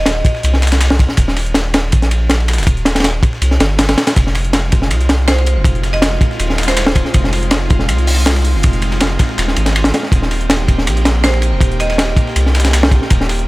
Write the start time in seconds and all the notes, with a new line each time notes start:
Already playing: D#1
0.06 snare, closed hi-hat, ride
0.25 kick, closed hi-hat, ride
0.35 snare
0.43 C2, closed hi-hat, ride
0.53 snare
0.62 snare, closed hi-hat, ride
0.67 snare, closed hi-hat
0.72 snare, closed hi-hat
0.81 snare, closed hi-hat, ride
0.90 snare
0.99 kick, closed hi-hat, ride
1.09 snare
1.17 D#1, kick, closed hi-hat, ride
1.28 snare
1.36 snare, open hi-hat, ride
1.46 closed hi-hat
1.54 snare, closed hi-hat, ride
1.74 snare, closed hi-hat, ride
1.92 A#1, kick, closed hi-hat, ride
2.02 snare, closed hi-hat
2.11 closed hi-hat, ride
2.29 snare, closed hi-hat, ride
2.40 ride
2.48 snare, closed hi-hat, ride
2.53 snare, closed hi-hat
2.58 D#1, snare, closed hi-hat
2.63 snare, closed hi-hat, ride
2.67 kick, closed hi-hat
2.77 closed hi-hat
2.85 snare, closed hi-hat, ride
2.95 snare, closed hi-hat, ride
3.00 snare, ride
3.04 snare, closed hi-hat, ride
3.23 kick, closed hi-hat, ride
3.33 snare
3.41 C2, closed hi-hat, ride
3.51 snare
3.60 G1, snare, closed hi-hat, ride
3.78 snare, closed hi-hat, ride
3.89 snare, ride
3.98 snare, closed hi-hat, ride
4.07 snare, closed hi-hat, ride
4.16 F1 G#3 C4 D#4 F4, kick, closed hi-hat, ride
4.27 snare
4.35 snare, open hi-hat, ride
4.45 closed hi-hat
4.53 snare, closed hi-hat, ride
4.72 kick, closed hi-hat, ride
4.82 snare
4.91 C2, closed hi-hat, ride
5.01 closed hi-hat
5.09 snare, closed hi-hat, ride
5.28 C5, snare, closed hi-hat, ride
5.38 ride
5.46 closed hi-hat, ride
5.56 F1
5.64 kick, closed hi-hat, ride
5.75 closed hi-hat
5.83 snare, closed hi-hat, ride
5.93 D#5, snare, ride
6.02 snare, closed hi-hat, ride
6.21 kick, closed hi-hat, ride
6.31 snare
6.39 D#1, closed hi-hat, ride
6.50 snare
6.58 snare, closed hi-hat, ride
6.63 snare, closed hi-hat
6.68 C5, snare, closed hi-hat
6.77 snare, closed hi-hat, ride
6.86 snare
6.95 kick, closed hi-hat, ride
7.05 snare
7.14 F1, kick, closed hi-hat, ride
7.24 snare
7.33 snare, open hi-hat, ride
7.43 closed hi-hat
7.51 snare, closed hi-hat, ride
7.70 kick, closed hi-hat, ride
7.79 snare
7.89 C2, closed hi-hat, ride
7.98 closed hi-hat
8.07 closed hi-hat, open hi-hat
8.26 snare, closed hi-hat, ride
8.36 ride
8.45 closed hi-hat
8.54 F1
8.63 kick, closed hi-hat, ride
8.73 closed hi-hat
8.82 snare, closed hi-hat, ride
8.92 snare, ride
9.01 snare, closed hi-hat, ride
9.19 kick, snare, closed hi-hat, ride
9.29 snare
9.38 D#1, snare, closed hi-hat, ride
9.48 snare
9.56 G#1, closed hi-hat, ride
9.66 snare, closed hi-hat
9.76 ride
9.84 snare, closed hi-hat
9.94 snare, closed hi-hat, ride
10.03 snare
10.12 D#1 A#3 G4, kick, closed hi-hat, ride
10.22 snare
10.31 snare, open hi-hat, ride
10.41 closed hi-hat
10.50 snare, closed hi-hat, ride
10.68 kick, closed hi-hat, ride
10.78 snare
10.87 A#1, closed hi-hat, ride
10.97 closed hi-hat
11.05 snare, closed hi-hat, ride
11.23 C5, snare, closed hi-hat, ride
11.34 ride
11.42 closed hi-hat, ride
11.52 D#1
11.61 kick, closed hi-hat, ride
11.71 closed hi-hat
11.80 D#5, snare, closed hi-hat, ride
11.90 D#5, snare, ride
11.98 snare, closed hi-hat, ride
12.17 kick, closed hi-hat, ride
12.27 snare
12.36 C2, closed hi-hat, ride
12.46 snare
12.55 snare, closed hi-hat, ride
12.60 snare, closed hi-hat
12.64 snare, closed hi-hat
12.73 snare, closed hi-hat, ride
12.83 snare
12.91 kick, closed hi-hat, ride
13.02 snare
13.10 D#1, kick, closed hi-hat, ride
13.21 snare
13.29 snare, open hi-hat, ride
13.39 closed hi-hat